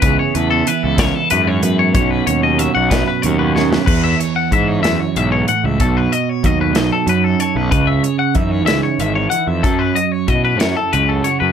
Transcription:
<<
  \new Staff \with { instrumentName = "Clean electric guitar" } { \time 6/8 \key e \major \tempo 4. = 62 b'16 cis''16 b'16 a'16 b'16 a'16 cis''16 a'16 b'16 cis''16 b'16 cis''16 | cis''16 b'16 cis''16 dis''16 e''16 fis''16 b'16 b'16 cis''16 b'16 cis''16 b'16 | b'16 e''16 cis''16 fis''16 e''16 cis''16 e''16 cis''16 e''16 cis''16 fis''16 e''16 | a'16 b'16 dis''16 cis''16 dis''16 b'16 dis''16 a'16 b'16 a'16 cis''16 b'16 |
b'16 e''16 cis''16 fis''16 e''16 cis''16 e''16 cis''16 e''16 cis''16 fis''16 e''16 | a'16 b'16 dis''16 cis''16 dis''16 b'16 cis''16 a'16 b'16 a'16 cis''16 b'16 | }
  \new Staff \with { instrumentName = "Clean electric guitar" } { \clef bass \time 6/8 \key e \major << { <e b e' gis'>8 a16 b16 e'8 b'8 e'8 b8 | <fis cis' fis'>8 cis'8 fis'8 e'16 fis'16 fis'8 cis'8 | r4 e'2 | r4 dis'4. a'8 |
r4 dis'2 | r4 e'4. fis'8 | } \\ { cis4 e4 gis,4 | b,4 fis4 fis,4 | e,4 e8 fis,8 gis,8 a,8 | b,4 fis4 fis,4 |
cis4 e8 cis8 dis8 e8 | fis,4 fis4 cis4 | } >> }
  \new Staff \with { instrumentName = "Picked electric bass" } { \clef bass \time 6/8 \key e \major cis,16 r16 e,8 r16 cis,8 r16 fis,16 fis,16 fis,8 | b,,8 dis,8. b,,8 r16 dis,4 | e,8 r8 gis,8 e,16 r16 b,,8 r16 cis,16 | b,,8 r8 dis,8 b,,16 r16 fis,8 r16 b,,16 |
cis,8 r8 fis,8 cis,16 r16 gis,,8 r16 f,16 | fis,8 r8 b,8 fis,16 r16 cis,8 r16 fis,16 | }
  \new DrumStaff \with { instrumentName = "Drums" } \drummode { \time 6/8 <hh bd>8 hh8 hh8 <hh bd sn>8 hh8 hh8 | <hh bd>8 hh8 hh8 <hh bd sn>8 hh8 sn16 sn16 | <cymc bd>8 hh8 <hh bd>8 <hh sn>8 hh8 hh8 | <hh bd>8 hh8 <hh bd>8 <hh sn>8 hh8 hh8 |
<hh bd>8 hh8 <hh bd>8 <hh sn>8 hh8 hh8 | <hh bd>8 hh8 <hh bd>8 <hh sn>8 hh8 hh8 | }
>>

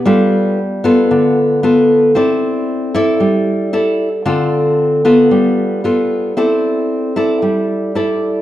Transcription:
\new Staff \with { instrumentName = "Nylon-string guitar" } { \time 4/4 \key c \major \tempo 4 = 114 << { <b f' a'>4 r8 <b f' a'>4. <b f' a'>4 | <e' a' d''>4. <e' a' d''>4. <e' a' d''>8 r8 | <c' f' a'>4. <b f' a'>4. <b f' a'>4 | <e' a' d''>4. <e' a' d''>4. <e' a' d''>4 | } \\ { g2 d2 | c'2 g2 | d2 g2 | c'2 g2 | } >> }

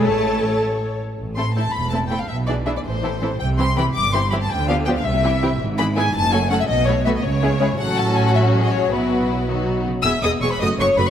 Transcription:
<<
  \new Staff \with { instrumentName = "Violin section" } { \time 6/8 \key a \major \tempo 4. = 108 cis''2~ cis''8 r8 | \key a \minor r8 c'''8 a''8 b''8 a''8 g''16 f''16 | e''8 d''8 e''16 d''16 c''4. | g''8 c'''8 b''8 d'''8 c'''8 b''16 a''16 |
g''8 f''8 g''16 f''16 e''4. | \key e \major r8 b''8 gis''8 a''8 gis''8 fis''16 e''16 | dis''8 cis''8 e''16 dis''16 cis''4. | fis''8 a''8 gis''16 fis''16 e''8. dis''16 cis''8 |
b'4. r4. | e'''8 dis'''8 cis'''16 b''16 dis'''8 cis'''8 b''16 r16 | }
  \new Staff \with { instrumentName = "Violin section" } { \time 6/8 \key a \major << { a''4. r4. | \key a \minor r8 a'8 a'8 r8 a'8 a'8 | r8 gis'8 gis'8 r8 a'8 a'8 | r8 g'8 g'8 r8 g'8 g'8 |
r8 g'8 g'8 r8 g'8 g'8 | \key e \major r8 gis'8 gis'8 r8 a'8 a'8 | r8 b'8 b'8 r8 gis'8 gis'8 | a'2 gis'4 |
fis'4. fis'4 r8 | e''8 dis''8 cis''16 b'16 dis''8 cis''8 b'16 cis''16 | } \\ { r2. | r8 e'8 e'8 r8 e'8 e'8 | r8 e'8 e'8 r8 e'8 e'8 | r8 e'8 e'8 r8 e'8 e'8 |
r8 d'8 d'8 r8 e'8 e'8 | r8 e'8 e'8 r8 fis'8 fis'8 | r8 fis'8 fis'8 r8 e'8 e'8 | fis'2. |
e'4. dis'4 r8 | r2. | } >> }
  \new Staff \with { instrumentName = "Viola section" } { \time 6/8 \key a \major a'2~ a'16 r8. | \key a \minor r8 <a c'>8 <a c'>8 r8 <a c'>8 <a c'>8 | r8 <e d'>8 <e d'>8 r8 <e c'>8 <e c'>8 | r8 <e c'>8 <e c'>8 r8 <e c'>8 <e c'>8 |
r8 <f b>8 <f b>8 r8 <e c'>8 <e c'>8 | \key e \major r8 <e b>8 <e b>8 r8 <a cis'>8 <a cis'>8 | r8 <a b>8 <a b>8 r8 <gis cis'>8 <gis cis'>8 | <fis cis'>2. |
<fis b>4. <fis b>4 r8 | <b gis'>8 <b gis'>8 <b gis'>8 <a fis'>8 <a fis'>8 <a fis'>8 | }
  \new Staff \with { instrumentName = "Cello section" } { \clef bass \time 6/8 \key a \major a4. r4. | \key a \minor a,4. e,4. | b,4. a,4. | c4. g,4. |
d4. c4. | \key e \major gis,4. fis,4. | b,4. cis4. | a,2. |
b,4. dis8 b,8 cis8 | e,8 e,8 e,8 fis,8 fis,8 fis,8 | }
  \new Staff \with { instrumentName = "Double bass section" } { \clef bass \time 6/8 \key a \major a,,2~ a,,8 r8 | \key a \minor a,,4. e,,4. | b,,4. a,,4. | c,4. g,,4. |
d,4. c,4. | \key e \major gis,,4. fis,,4. | b,,4. cis,4. | a,,2. |
b,,2~ b,,8 r8 | e,,8 e,,8 e,,8 fis,,8 fis,,8 fis,,8 | }
>>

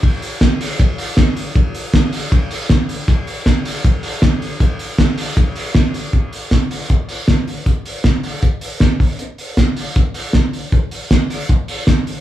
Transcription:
\new DrumStaff \with { instrumentName = "Drums" } \drummode { \time 4/4 \tempo 4 = 157 <bd cymr>8 hho8 <hhp bd cymr sn>8 hho8 <hhp bd cymr>8 hho8 <hhp bd cymr sn>8 hho8 | <hhp bd cymr>8 hho8 <hhp bd cymr sn>8 hho8 <hhp bd cymr>8 hho8 <hhp bd cymr sn>8 hho8 | <hhp bd cymr>8 hho8 <hhp bd cymr sn>8 hho8 <hhp bd cymr>8 hho8 <hhp bd cymr sn>8 hho8 | <hhp bd cymr>8 hho8 <hhp bd cymr sn>8 hho8 <hhp bd cymr>8 hho8 <hhp bd cymr sn>8 hho8 |
<hh bd>8 hho8 <hh bd sn>8 hho8 <hh bd>8 hho8 <hh bd sn>8 hho8 | <hh bd>8 hho8 <hh bd sn>8 hho8 <hh bd>8 hho8 <hh bd sn>8 <hho bd>8 | hh8 hho8 <hh bd sn>8 hho8 <hh bd>8 hho8 <hh bd sn>8 hho8 | <hh bd>8 hho8 <hh bd sn>8 hho8 <hh bd>8 hho8 <hh bd sn>8 hho8 | }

